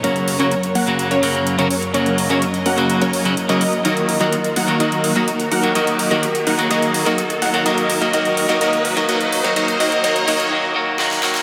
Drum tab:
HH |xxoxxxoxxxoxxxox|xxoxxxoxxxoxxxox|xxoxxxoxxxo-xxox|xxoxxxoxxxoxxxox|
SD |----------------|----------------|----------------|----------------|

HH |xxo-xxoxxxoxxxox|xxoxxxox--------|
SD |----------------|------------oooo|